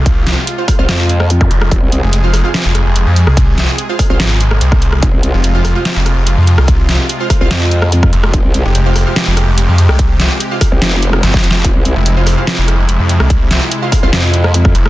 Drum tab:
HH |x-----x-----x-----o-----x-----x-----x-----x-----|x-----x-----x-----o-----x-----x-----x-----x-----|x-----x-----x-----o-----x-----x-----x-----x-----|x-----x-----x-----o-----x-----x-----x-----x-----|
SD |------o-----------r-----o--------r-----r-----r--|------------------r-----o-----r--------------r--|------o-----------r-----o--------r-----r-----r--|------------------r-----o-----r--------------r--|
BD |o-----------------o--------------------o--------|o-----------------------------------------------|o-----------------o--------------------o--------|o-----------------------------------------------|

HH |x-----x-----x-----o-----x-----x-----x-----x-----|x-----x-----x-----o-----x-----x-----x-----x-----|x-----x-----x-----o-----x-----x-----x-----x-----|x-----x-----x-----o-----x-----x-----x-----x-----|
SD |------o-----------r-----o--------r-----r-----r--|------------------r-----o-----r--------------r--|------o-----------r-----o--------r--o---o---o---|------------------r-----o-----r--------------r--|
BD |o-----------------o--------------------o--------|o-----------------------------------------------|o-----------------o--------------------o--------|o-----------------------------------------------|

HH |x-----x-----x-----o-----x-----x-----x-----x-----|
SD |------o-----------r-----o--------r-----r-----r--|
BD |o-----------------o--------------------o--------|